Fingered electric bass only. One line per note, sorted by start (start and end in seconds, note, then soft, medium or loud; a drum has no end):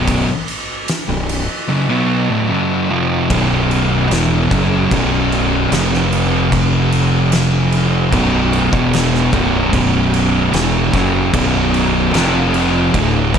0.00 0.25 B0 loud
0.28 muted fingered electric bass stroke soft
1.09 1.46 B0 medium
3.30 4.07 B0 loud
4.11 4.48 E1 loud
4.51 4.88 F#1 medium
4.92 5.68 B0 loud
5.72 8.09 F1 loud
8.12 8.69 B0 medium
8.72 9.29 E1 loud
9.33 9.70 B0 medium
9.73 10.49 B0 loud
10.53 10.91 E1 medium
10.94 11.31 F#1 loud
11.34 12.10 B0 loud
12.14 12.90 F1 loud
12.94 13.31 D1 loud
13.34 13.39 A1 medium